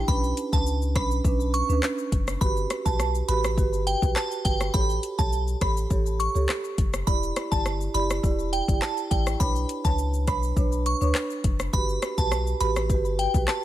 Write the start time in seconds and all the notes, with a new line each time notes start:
0.08 B1 C#4 D4 B4 B5, kick, shaker
0.24 shaker
0.37 closed hi-hat, shaker
0.53 C#2 C#4 D4 B4 A5, kick, shaker
0.67 shaker
0.82 shaker
0.95 B1 C#4 D4 B4 B5, kick, cross-stick, closed hi-hat, shaker
1.11 shaker
1.24 B1 C#4 D4 B4, kick, shaker
1.40 shaker
1.54 C#6, closed hi-hat, shaker
1.69 D2 C#4 D4 B4, shaker
1.83 cross-stick, clap, shaker
1.98 shaker
2.12 F#1, kick, closed hi-hat, shaker
2.28 cross-stick, shaker
2.41 G1 F#4 G4 B4 B5, kick, shaker
2.57 shaker
2.70 cross-stick, closed hi-hat, shaker
2.86 B1 F#4 G4 B4 A5, kick, shaker
3.00 cross-stick, shaker
3.15 shaker
3.28 A1 F#4 G4 B4 B5, closed hi-hat, shaker
3.44 cross-stick, shaker
3.57 G1 F#4 G4 B4, kick, shaker
3.73 shaker
3.87 G5, closed hi-hat, shaker
4.02 B1 F#4 G4 B4, kick, shaker
4.16 A5, cross-stick, clap, shaker
4.31 shaker
4.45 G1 F#4 G4 B4 G5, kick, closed hi-hat, shaker
4.60 cross-stick, shaker
4.74 A1 G4 A4 C#5 B5, kick, shaker
4.90 shaker
5.03 closed hi-hat, shaker
5.19 B1 G4 A4 C#5 A5, kick, shaker
5.33 shaker
5.48 shaker
5.61 A1 G4 A4 C#5 B5, kick, cross-stick, closed hi-hat, shaker
5.77 shaker
5.90 A1 G4 A4 C#5, kick, shaker
6.06 shaker
6.20 C#6, closed hi-hat, shaker
6.35 C#2 G4 A4 C#5, shaker
6.49 cross-stick, clap, shaker
6.64 shaker
6.78 F#1, kick, closed hi-hat, shaker
6.93 cross-stick, shaker
7.07 E1 E4 G4 D5 B5, kick, shaker
7.23 shaker
7.36 cross-stick, closed hi-hat, shaker
7.51 G1 E4 G4 D5 A5, kick, shaker
7.66 cross-stick, shaker
7.81 shaker
7.94 F#1 E4 G4 D5 B5, closed hi-hat, shaker
8.10 cross-stick, shaker
8.23 E1 E4 G4 D5, kick, shaker
8.39 shaker
8.53 G5, closed hi-hat, shaker
8.68 G1 E4 G4 D5, kick, shaker
8.82 A5, cross-stick, clap, shaker
8.97 shaker
9.11 A1 E4 G4 D5 G5, kick, closed hi-hat, shaker
9.27 cross-stick, shaker
9.40 B1 D4 B4 C#5 B5, kick, shaker
9.56 shaker
9.69 closed hi-hat, shaker
9.85 C#2 D4 B4 C#5 A5, kick, shaker
9.98 shaker
10.14 shaker
10.27 B1 D4 B4 C#5 B5, kick, cross-stick, closed hi-hat, shaker
10.43 shaker
10.56 B1 D4 B4 C#5, kick, shaker
10.72 shaker
10.86 C#6, closed hi-hat, shaker
11.01 D2 D4 B4 C#5, shaker
11.15 cross-stick, clap, shaker
11.30 shaker
11.44 F#1, kick, closed hi-hat, shaker
11.60 cross-stick, shaker
11.73 G1 F#4 G4 B4 B5, kick, shaker
11.89 shaker
12.02 cross-stick, closed hi-hat, shaker
12.18 B1 F#4 G4 B4 A5, kick, shaker
12.32 cross-stick, shaker
12.47 shaker
12.60 A1 F#4 G4 B4 B5, closed hi-hat, shaker
12.76 cross-stick, shaker
12.90 G1 F#4 G4 B4, kick, shaker
13.05 shaker
13.19 G5, closed hi-hat, shaker
13.34 B1 F#4 G4 B4, kick, shaker
13.48 A5, cross-stick, clap, shaker